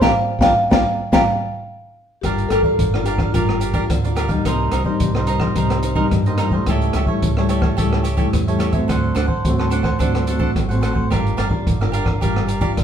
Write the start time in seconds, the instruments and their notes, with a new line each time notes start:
0.01 fingered electric bass A#1, nylon-string guitar A#3 D4 F4, cavaquinho G4 A#4 D5, marimba F5 G5 A#5, kick, snare
0.39 fingered electric bass A#1, nylon-string guitar A#3 D4 F4, cavaquinho A#4 D5, marimba F5 G5 A#5, kick, snare
0.43 cavaquinho G4
0.71 fingered electric bass A#1, nylon-string guitar A#3 D4 F4, cavaquinho G4 A#4 D5, marimba F5 G5 A#5, kick, snare
1.12 fingered electric bass A#1, nylon-string guitar A#3 D4 F4, cavaquinho G4 A#4 D5, marimba F5 G5 A#5, kick, snare
2.21 fingered electric bass G1, nylon-string guitar G3 D4 F4 A#4, marimba G4, cavaquinho G4 A#4, kick, cross-stick, closed hi-hat
2.26 cavaquinho D5 F5
2.38 closed hi-hat
2.49 fingered electric bass G1, cavaquinho G4 A#4 D5 F5, marimba A4, cross-stick, closed hi-hat
2.63 nylon-string guitar D4 F4 A#4, cavaquinho A#4 D5 F5, kick
2.79 fingered electric bass G1, nylon-string guitar D3, kick, closed hi-hat
2.94 nylon-string guitar D4 F4 A#4, cavaquinho A#4 D5 F5, cross-stick
3.04 marimba G4, cavaquinho G4 A#4 D5 F5, closed hi-hat
3.18 cavaquinho A#4 D5 F5, kick, cross-stick
3.33 fingered electric bass G1, nylon-string guitar G3 D4 F4 A#4, marimba F4, cavaquinho G4 A#4 D5 F5, kick, closed hi-hat
3.49 cross-stick
3.59 marimba G4, cavaquinho G4 A#4 D5 F5, closed hi-hat
3.73 nylon-string guitar D4 F4 A#4, cavaquinho G4 A#4 D5 F5, kick, closed hi-hat
3.90 fingered electric bass D2, nylon-string guitar D3, kick, cross-stick, closed hi-hat
4.04 nylon-string guitar D4 F4 A#4, cavaquinho A#4 D5 F5, closed hi-hat
4.16 cavaquinho G4 A#4 D5 F5, cross-stick, closed hi-hat
4.28 nylon-string guitar G3 A#3 D#4, cavaquinho A#4 D5 F5, kick, closed hi-hat
4.45 fingered electric bass C2, nylon-string guitar C3, cavaquinho D#4 A#4 C5 D#5, kick, cross-stick, closed hi-hat
4.72 fingered electric bass C2, cavaquinho D#4 A#4 C5 D#5, cross-stick, closed hi-hat
4.85 nylon-string guitar G3 A#3 D#4, cavaquinho A#4 C5 D#5, kick
5.00 fingered electric bass C2, nylon-string guitar G2, kick, closed hi-hat
5.15 nylon-string guitar G3 A#3 D#4, cavaquinho A#4 C5 D#5, cross-stick
5.27 cavaquinho D#4 A#4 C5 D#5, closed hi-hat
5.40 cavaquinho A#4 C5 D#5, kick, cross-stick
5.55 fingered electric bass C2, nylon-string guitar C3 G3 A#3 D#4, cavaquinho D#4 A#4 C5 D#5, kick, closed hi-hat
5.70 cross-stick, closed hi-hat
5.82 cavaquinho D#4 A#4 C5 D#5, closed hi-hat
5.95 nylon-string guitar G3 A#3 D#4, cavaquinho D#4 A#4 C5 D#5, kick
6.11 nylon-string guitar G2, fingered electric bass G2, kick, cross-stick, closed hi-hat
6.26 nylon-string guitar G3 A#3 D#4, cavaquinho A#4 C5 D#5, closed hi-hat
6.38 cavaquinho D#4 A#4 C5 D#5, cross-stick, closed hi-hat
6.51 nylon-string guitar G3 A3 E4, cavaquinho A#4 C5 D#5, kick
6.66 fingered electric bass C#2, nylon-string guitar C#3, cavaquinho G4 A4 C#5 E5, kick, cross-stick, closed hi-hat
6.82 closed hi-hat
6.93 fingered electric bass C#2, cavaquinho G4 A4 C#5 E5, cross-stick, closed hi-hat
7.07 nylon-string guitar G3 A3 E4, cavaquinho A4 C#5 E5, kick
7.22 fingered electric bass C#2, nylon-string guitar C#3, kick, closed hi-hat
7.37 nylon-string guitar G3 A3 E4, cavaquinho A4 C#5 E5, cross-stick
7.49 cavaquinho G4 A4 C#5 E5, closed hi-hat
7.61 cavaquinho A4 C#5 E5, kick, cross-stick
7.77 fingered electric bass C#2, nylon-string guitar C#3 G3 A3 E4, cavaquinho G4 A4 C#5 E5, kick, closed hi-hat
7.93 cross-stick
8.03 cavaquinho G4 A4 C#5 E5, closed hi-hat
8.17 nylon-string guitar G3 A3 E4, cavaquinho G4 A4 C#5 E5, kick, closed hi-hat
8.33 fingered electric bass E2, nylon-string guitar C#3, kick, cross-stick, closed hi-hat
8.47 nylon-string guitar G3 A3 E4, cavaquinho A4 C#5 E5, closed hi-hat
8.59 cavaquinho G4 A4 C#5 E5, cross-stick, closed hi-hat
8.72 nylon-string guitar A3 C4 F#4, cavaquinho A4 C#5 E5, kick, closed hi-hat
8.88 fingered electric bass D2, nylon-string guitar D3, cavaquinho D4 A4 C5 F#5, kick, cross-stick, closed hi-hat
9.15 fingered electric bass D2, cavaquinho D4 A4 C5 F#5, cross-stick, closed hi-hat
9.27 cavaquinho A4 C5 F#5, kick
9.44 fingered electric bass D2, nylon-string guitar A2 A3 C4 F#4, kick, closed hi-hat
9.58 cavaquinho A4 C5 F#5, cross-stick
9.70 cavaquinho D4 A4 C5 F#5, closed hi-hat
9.83 cavaquinho A4 C5 F#5, kick, cross-stick
9.99 fingered electric bass D2, nylon-string guitar D3 A3 C4 F#4, cavaquinho D4 A4 C5 F#5, kick, closed hi-hat
10.15 cross-stick, closed hi-hat
10.27 nylon-string guitar A3 C4 F#4, cavaquinho D4 A4 C5 F#5, closed hi-hat
10.39 cavaquinho D4 A4 C5 F#5, kick
10.55 fingered electric bass A1, nylon-string guitar A2, kick, cross-stick, closed hi-hat
10.69 nylon-string guitar A3 C4 F#4, cavaquinho A4 C5 F#5, closed hi-hat
10.81 cavaquinho D4 A4 C5 F#5, cross-stick, closed hi-hat
10.93 cavaquinho A4 C5 F#5, kick
11.10 fingered electric bass G1, nylon-string guitar G3 D4 F4 A#4, cavaquinho G4 A#4 D5 F5, kick, cross-stick, closed hi-hat
11.27 closed hi-hat
11.37 fingered electric bass G1, cavaquinho G4 A#4 D5 F5, cross-stick, closed hi-hat
11.49 nylon-string guitar D4 F4 A#4, cavaquinho A#4 D5 F5, kick
11.67 fingered electric bass G1, nylon-string guitar D3, kick, closed hi-hat
11.81 nylon-string guitar D4 F4 A#4, cavaquinho A#4 D5 F5, cross-stick
11.92 cavaquinho G4 A#4 D5 F5, closed hi-hat
12.05 cavaquinho A#4 D5 F5, kick, cross-stick
12.21 fingered electric bass G1, nylon-string guitar G3 D4 F4 A#4, cavaquinho G4 A#4 D5 F5, kick, closed hi-hat
12.36 cross-stick
12.47 cavaquinho G4 A#4 D5 F5, closed hi-hat
12.61 nylon-string guitar D4 F4 A#4, cavaquinho G4 A#4 D5 F5, kick, closed hi-hat
12.76 fingered electric bass G1, nylon-string guitar D3, kick, cross-stick, closed hi-hat